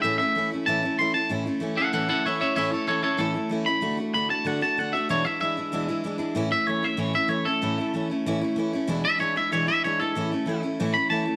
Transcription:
X:1
M:4/4
L:1/8
Q:1/4=190
K:A
V:1 name="Clean electric guitar"
e e2 z a2 =c' a | z3 [Af] [Af] [Af] [ce] [ce] | [ce] [Ac] [Ac] [Ac] A2 z b- | b z b a f a f e |
c e e6 | z e c e c e c A- | A3 z4 z | z e c e c e c A- |
A3 z2 b a2 |]
V:2 name="Steel-string acoustic guitar"
[A,,E,A,CE] [A,CE] [E,A,CE] [A,CE] [A,,E,A,CE] [A,CE] [E,A,CE] [A,CE] | [A,,E,A,CE] [A,CE] [E,A,CE] [A,CE] [A,,E,A,CE] [A,CE] [E,A,CE] [A,CE] | [A,,E,A,CE] [A,CE] [E,A,CE] [A,CE] [A,,E,A,CE] [A,CE] [E,A,CE] [A,CE] | [D,A,DF] [A,DF] [D,A,DF] [A,DF] [D,A,DF] [A,DF] [D,A,DF] [A,DF] |
[E,,B,,E,G,DE] [E,G,DE] [E,G,DE] [E,G,DE] [E,,B,,E,G,DE] [E,G,DE] [E,G,DE] [E,G,DE] | [A,,E,A,CE] [A,CE] [E,A,CE] [A,CE] [A,,E,A,CE] [A,CE] [E,A,CE] [A,CE] | [A,,E,A,CE] [A,CE] [E,A,CE] [A,CE] [A,,E,A,CE] [A,CE] [E,A,CE] [A,CE] | [E,,B,,E,G,DE] [E,DE] [E,G,DE] [E,G,DE] [E,,B,,E,G,DE] [E,G,DE] [E,G,DE] [E,G,DE] |
[A,,E,A,CE] [A,CE] [E,A,CE] [A,CE] [A,,E,A,CE] [A,CE] [E,A,CE] [A,CE] |]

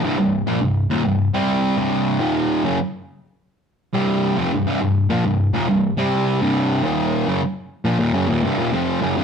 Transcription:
X:1
M:4/4
L:1/16
Q:1/4=104
K:Cphr
V:1 name="Distorted electric guitar" clef=bass
[C,,G,,] [C,,G,,]2 [B,,F,] [C,,G,,]2 [E,,B,,] [C,,G,,]2 [C,G,C]3 [C,,G,,C,]3 [E,,B,,E,]- | [E,,B,,E,]2 [^F,,D,] z8 [C,,G,,C,]3 [=F,,C,] [C,,G,,] | [C,,G,,] [C,,G,,]2 [B,,F,] [C,,G,,]2 [E,,B,,] [C,,G,,]2 [C,G,C]3 [C,,G,,C,]3 [E,,B,,E,]- | [E,,B,,E,]2 [^F,,D,] z3 [B,,=F,] [E,,B,,] [^F,,D,] [E,,B,,] [C,,G,,] [E,,B,,] [=F,,C,F,]2 [^F,,D,] [C,,G,,] |]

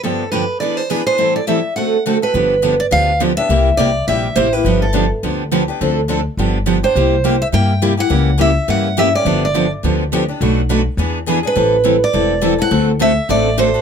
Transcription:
X:1
M:4/4
L:1/8
Q:"Swing" 1/4=208
K:Gmix
V:1 name="Steel-string acoustic guitar"
A2 B2 d c B c- | c d e2 ^f2 z B- | B3 d f2 z e- | e2 d2 e2 c B- |
B A2 z4 z | z6 z c- | c3 e g2 z ^f- | ^f2 e2 f2 e d- |
d d2 z4 z | z6 z B- | B3 d4 ^f- | ^f z e2 d2 c2 |]
V:2 name="Steel-string acoustic guitar"
[G,,D,F,B,DG] z [G,,D,F,B,DG] z [E,B,D^G] z [E,B,DG] [B,DG] | [A,,E,G,CEA] z [A,,E,G,CEA] z [D,A,C^FA] z [D,A,CFA] [CFA] | [D,F,B,DG] z [D,F,B,DG] z [D,F,B,DG] z [D,F,B,DG] [B,DG] | [C,G,_B,EG] z [C,G,B,EG] z [C,G,B,EG] z [C,G,B,EG] [B,EG] |
[D,F,B,DG] z [D,F,B,DG] z [D,F,B,DG] z [D,F,B,DG] [B,DG] | [D,F,CDA] z [D,F,CDA] z [D,F,B,DG] z [D,F,B,DG] [B,DG] | [C,G,_B,EG] z [C,G,B,EG] z [C,G,B,EG] z [C,G,B,EG] [B,EG] | [^C,E,^A,^CG] z [C,E,A,CG] z [C,E,A,CG] z [C,E,A,CG] [A,CG] |
[D,F,B,DG] z [D,F,B,DG] z [D,F,B,DG] z [D,F,B,DG] [B,DG] | [B,,^F,A,D^F] z [B,,F,A,DF] z [E,B,D^G] z [E,B,DG] [B,DG] | [E,G,CEA] z [E,G,CEA] z [E,G,CEA] z [E,G,CEA] [CEA] | [D,A,C^FA] z [D,A,CFA] z [D,A,CFA] z [D,A,CFA] [CFA] |]
V:3 name="Steel-string acoustic guitar"
[G,,D,F,B,DG] z [G,,D,F,B,DG] z [E,B,D^GB] z [E,B,DGB] z | [A,,E,G,CEA] z [A,,E,G,CEA] z [D,A,C^FA] z [D,A,CFA] z | [D,F,B,DG] z [D,F,B,DG] z [D,F,B,DG] z [D,F,B,DG] z | [C,G,_B,EG] z [C,G,B,EG] z [C,G,B,EG] z [C,G,B,EG] z |
[D,F,B,DG] z [D,F,B,DG] z [D,F,B,DG] z [D,F,B,DG] z | [D,F,CDA] z [D,F,CDA] z [D,F,B,DG] z [D,F,B,DG] z | [C,G,_B,EG] z [C,G,B,EG] z [C,G,B,EG] z [C,G,B,EG] z | [^C,G,^A,EG] z [C,G,A,EG] z [C,G,A,EG] z [C,G,A,EG] z |
[D,F,B,DG] z [D,F,B,DG] z [D,F,B,DG] z [D,F,B,DG] z | [B,,^F,A,D^FB] z [B,,F,A,DFB] z [E,B,D^GB] z [E,B,DGB] z | [E,G,CEA] z [E,G,CEA] z [E,G,CEA] z [E,G,CEA] z | [D,A,C^FA] z [D,A,CFA] z [D,A,CFA] z [D,A,CFA] z |]
V:4 name="Upright bass" clef=bass
z8 | z8 | G,,,4 D,,4 | C,,2 C,,2 _B,,,2 A,,,2 |
G,,,4 D,,4 | D,,4 G,,,4 | C,,4 G,,4 | ^C,,4 G,,4 |
G,,,4 D,,4 | B,,,4 E,,4 | A,,,4 E,,,4 | D,,4 A,,,4 |]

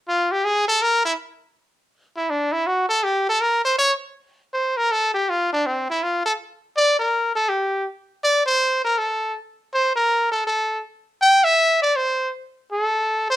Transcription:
X:1
M:4/4
L:1/8
Q:"Swing" 1/4=162
K:Aphr
V:1 name="Trumpet"
F G _A =A B E z2 | z3 E D E _G A | G A B c _d z3 | c B A G F D C E |
F A z2 d B2 A | G2 z2 d c2 B | A2 z2 c B2 A | A2 z2 g e2 d |
c2 z2 A3 c |]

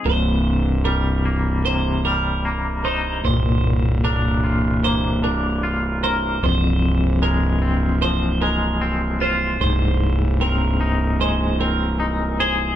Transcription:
X:1
M:4/4
L:1/8
Q:1/4=75
K:Cm
V:1 name="Clean electric guitar"
c2 B2 c B2 c | c2 B2 c B2 c | c2 B2 c B2 c | c2 B2 c B2 c |]
V:2 name="Clean electric guitar"
C,,2 G, B, C, G, B, E | B,,2 D F B, D F B | F,,2 A, C F, A, C F | A,,2 C E A, C E A |]
V:3 name="Fingered electric bass" clef=bass
C,,,8 | C,,,8 | C,,,8 | C,,,8 |]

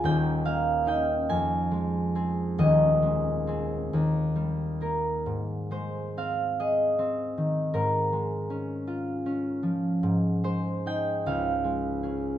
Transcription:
X:1
M:6/8
L:1/8
Q:3/8=48
K:Ab
V:1 name="Harp"
g f g a3 | e6- | e c f e3 | B6 |
z c g f3 |]
V:2 name="Harp"
[E,,,E,,] B, [DE] F,, A, [CA] | [E,,,E,,] A, [CA] E,, G, [B,B] | A,, A, C A C E, | A,, A, D F D F, |
A,, A, [EA] D,, A, [DA] |]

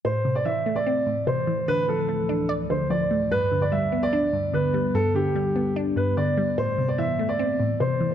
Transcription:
X:1
M:4/4
L:1/16
Q:1/4=147
K:Am
V:1 name="Grand piano"
c3 d e3 d4- d c4 | B2 A6 z2 c2 d4 | B3 d e3 d4- d B4 | A2 G6 z2 B2 d4 |
c3 d e3 d4- d c4 |]
V:2 name="Ambient pad" clef=bass
[A,,E,C]16 | [D,,F,]16 | [G,,D,B,]16- | [G,,D,B,]16 |
[A,,E,C]16 |]
V:3 name="Synth pluck" clef=bass
A,,2 C,2 E,2 A,2 C2 A,,2 C,2 E,2 | D,2 F,2 A,2 D2 d2 D,2 F,2 A,2 | G,,2 D,2 G,2 B,2 D2 G,,2 D,2 G,2 | G,,2 D,2 G,2 B,2 D2 G,,2 D,2 G,2 |
A,,2 C,2 E,2 A,2 C2 A,,2 C,2 E,2 |]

